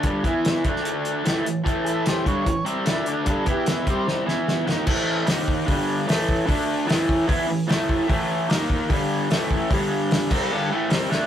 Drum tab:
CC |----------------|----------------|----------------|x---------------|
HH |x-x-x-x-x-x-x-x-|x-x-x-x-x-x-x-x-|x-x-x-x---------|----o---o---o---|
SD |----o--o----o---|----o-------o---|----o---o-o-o-o-|----o-------o---|
BD |o-o---o---------|o-----o-o-------|o-o---o---------|o-----o-o-----o-|

CC |----------------|----------------|------x---------|
HH |o---o---o---o---|o---o---o---o---|o---o-------o---|
SD |----o-------o---|----o-------o---|----o-------o-o-|
BD |o-----o-o-----o-|o-----o-o-----o-|o-----o---------|